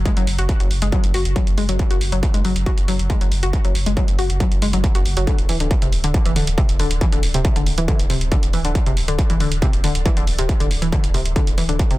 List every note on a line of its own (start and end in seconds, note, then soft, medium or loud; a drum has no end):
0.05 0.11 G#3 medium
0.05 kick loud
0.05 closed hi-hat medium
0.17 0.26 F#1 medium
0.17 0.25 F#3 medium
0.17 closed hi-hat medium
0.27 0.38 F#1 loud
0.27 open hi-hat loud
0.38 0.49 F#1 medium
0.38 0.44 F#4 medium
0.38 closed hi-hat medium
0.49 kick loud
0.49 closed hi-hat medium
0.60 0.70 F#1 medium
0.60 0.68 F#3 medium
0.60 closed hi-hat medium
0.71 0.81 F#1 loud
0.71 open hi-hat medium
0.82 0.92 F#1 medium
0.82 0.87 G#3 medium
0.82 closed hi-hat medium
0.92 1.01 F#3 medium
0.92 kick loud
0.92 closed hi-hat medium
1.04 1.13 F#1 medium
1.04 closed hi-hat medium
1.14 1.25 F#1 loud
1.14 1.20 F#4 medium
1.14 open hi-hat loud
1.25 1.36 F#1 medium
1.25 closed hi-hat medium
1.36 1.44 F#3 medium
1.36 kick loud
1.36 closed hi-hat medium
1.47 1.57 F#1 medium
1.47 closed hi-hat medium
1.58 1.68 F#1 loud
1.58 1.63 G#3 medium
1.58 open hi-hat medium
1.69 1.79 F#1 medium
1.69 1.77 F#3 medium
1.69 closed hi-hat medium
1.79 kick loud
1.79 closed hi-hat medium
1.91 2.00 F#1 medium
1.91 1.96 F#4 medium
1.91 closed hi-hat medium
2.01 2.12 F#1 loud
2.01 open hi-hat loud
2.12 2.23 F#1 medium
2.12 2.20 F#3 medium
2.12 closed hi-hat medium
2.23 kick loud
2.23 closed hi-hat medium
2.34 2.44 F#1 medium
2.34 2.39 G#3 medium
2.34 closed hi-hat medium
2.45 2.55 F#1 loud
2.45 2.53 F#3 medium
2.45 open hi-hat loud
2.56 2.66 F#1 medium
2.56 closed hi-hat medium
2.66 2.72 F#4 medium
2.66 kick loud
2.66 closed hi-hat medium
2.78 2.88 F#1 medium
2.78 closed hi-hat medium
2.88 2.99 F#1 loud
2.88 2.96 F#3 medium
2.88 open hi-hat loud
2.99 3.10 F#1 medium
2.99 closed hi-hat medium
3.10 3.15 G#3 medium
3.10 kick loud
3.10 closed hi-hat medium
3.21 3.31 F#1 medium
3.21 3.29 F#3 medium
3.21 closed hi-hat medium
3.32 3.42 F#1 loud
3.32 open hi-hat loud
3.43 3.53 F#1 medium
3.43 3.48 F#4 medium
3.43 closed hi-hat medium
3.53 kick loud
3.53 closed hi-hat medium
3.65 3.74 F#1 medium
3.65 3.72 F#3 medium
3.65 closed hi-hat medium
3.75 3.86 F#1 loud
3.75 open hi-hat loud
3.86 3.97 F#1 medium
3.86 3.92 G#3 medium
3.86 closed hi-hat medium
3.97 4.05 F#3 medium
3.97 kick loud
3.97 closed hi-hat medium
4.08 4.18 F#1 medium
4.08 closed hi-hat medium
4.18 4.29 F#1 loud
4.18 4.24 F#4 medium
4.18 open hi-hat medium
4.30 4.40 F#1 medium
4.30 closed hi-hat medium
4.40 4.49 F#3 medium
4.40 kick loud
4.40 closed hi-hat medium
4.51 4.61 F#1 medium
4.51 closed hi-hat medium
4.62 4.73 F#1 loud
4.62 4.68 G#3 medium
4.62 open hi-hat loud
4.73 4.84 F#1 medium
4.73 4.81 F#3 medium
4.73 closed hi-hat medium
4.84 kick loud
4.84 closed hi-hat medium
4.95 5.05 F#1 medium
4.95 5.00 F#4 medium
4.95 closed hi-hat medium
5.05 5.16 F#1 loud
5.05 open hi-hat loud
5.17 5.27 F#1 medium
5.17 5.25 F#3 medium
5.17 closed hi-hat medium
5.27 5.36 D3 medium
5.27 kick loud
5.27 closed hi-hat medium
5.38 5.48 D1 medium
5.38 closed hi-hat medium
5.49 5.60 D1 loud
5.49 5.55 E3 medium
5.49 open hi-hat loud
5.60 5.71 D1 medium
5.60 5.68 D3 medium
5.60 closed hi-hat medium
5.71 kick loud
5.71 closed hi-hat medium
5.82 5.92 D1 medium
5.82 5.87 C3 medium
5.82 closed hi-hat medium
5.92 6.03 D1 loud
5.92 open hi-hat medium
6.04 6.14 D1 medium
6.04 6.12 D3 medium
6.04 closed hi-hat medium
6.14 kick loud
6.14 closed hi-hat medium
6.25 6.35 D1 medium
6.25 6.31 E3 medium
6.25 closed hi-hat medium
6.36 6.47 D1 loud
6.36 6.44 D3 medium
6.36 open hi-hat loud
6.47 6.58 D1 medium
6.47 closed hi-hat medium
6.58 6.63 C3 medium
6.58 kick loud
6.58 closed hi-hat medium
6.69 6.79 D1 medium
6.69 closed hi-hat medium
6.79 6.90 D1 loud
6.79 6.88 D3 medium
6.79 open hi-hat loud
6.91 7.01 D1 medium
6.91 closed hi-hat medium
7.01 7.07 E3 medium
7.01 kick loud
7.01 closed hi-hat medium
7.12 7.22 D1 medium
7.12 7.20 D3 medium
7.12 closed hi-hat medium
7.23 7.34 D1 loud
7.23 open hi-hat loud
7.34 7.44 D1 medium
7.34 7.39 C3 medium
7.34 closed hi-hat medium
7.45 kick loud
7.45 closed hi-hat medium
7.56 7.66 D1 medium
7.56 7.64 D3 medium
7.56 closed hi-hat medium
7.66 7.77 D1 medium
7.66 open hi-hat medium
7.78 7.88 D1 medium
7.78 7.83 E3 medium
7.78 closed hi-hat medium
7.88 7.96 D3 medium
7.88 kick loud
7.88 closed hi-hat medium
7.99 8.09 D1 medium
7.99 closed hi-hat medium
8.10 8.21 D1 loud
8.10 8.15 C3 medium
8.10 open hi-hat loud
8.21 8.32 D1 medium
8.21 closed hi-hat medium
8.32 8.40 D3 medium
8.32 kick loud
8.32 closed hi-hat medium
8.43 8.53 D1 medium
8.43 closed hi-hat medium
8.53 8.64 D1 loud
8.53 8.59 E3 medium
8.53 open hi-hat medium
8.65 8.75 D1 medium
8.65 8.72 D3 medium
8.65 closed hi-hat medium
8.75 kick loud
8.75 closed hi-hat medium
8.86 8.96 D1 medium
8.86 8.92 C3 medium
8.86 closed hi-hat medium
8.97 9.08 D1 loud
8.97 open hi-hat loud
9.08 9.18 D1 medium
9.08 9.16 D3 medium
9.08 closed hi-hat medium
9.19 kick loud
9.19 closed hi-hat medium
9.30 9.40 D1 medium
9.30 9.35 E3 medium
9.30 closed hi-hat medium
9.40 9.51 D1 loud
9.40 9.49 D3 medium
9.40 open hi-hat medium
9.52 9.62 D1 medium
9.52 closed hi-hat medium
9.62 9.68 C3 medium
9.62 kick loud
9.62 closed hi-hat medium
9.73 9.83 D1 medium
9.73 closed hi-hat medium
9.84 9.95 D1 loud
9.84 9.92 D3 medium
9.84 open hi-hat loud
9.95 10.05 D1 medium
9.95 closed hi-hat medium
10.06 10.11 E3 medium
10.06 kick loud
10.06 closed hi-hat medium
10.17 10.27 D1 medium
10.17 10.25 D3 medium
10.17 closed hi-hat medium
10.27 10.38 D1 loud
10.27 open hi-hat medium
10.39 10.49 D1 medium
10.39 10.44 C3 medium
10.39 closed hi-hat medium
10.49 kick loud
10.49 closed hi-hat medium
10.60 10.70 D1 medium
10.60 10.68 D3 medium
10.60 closed hi-hat medium
10.71 10.81 D1 loud
10.71 open hi-hat loud
10.82 10.92 D1 medium
10.82 10.87 E3 medium
10.82 closed hi-hat medium
10.92 11.01 D3 medium
10.92 kick loud
10.92 closed hi-hat medium
11.04 11.14 D1 medium
11.04 closed hi-hat medium
11.14 11.25 D1 loud
11.14 11.20 C3 medium
11.14 open hi-hat medium
11.26 11.36 D1 medium
11.26 closed hi-hat medium
11.36 11.44 D3 medium
11.36 kick loud
11.36 closed hi-hat medium
11.47 11.57 D1 medium
11.47 closed hi-hat medium
11.58 11.68 D1 loud
11.58 11.63 E3 medium
11.58 open hi-hat loud
11.69 11.79 D1 medium
11.69 11.77 D3 medium
11.69 closed hi-hat medium
11.79 kick loud
11.79 closed hi-hat medium
11.91 11.98 D1 medium
11.91 11.96 C3 medium
11.91 closed hi-hat medium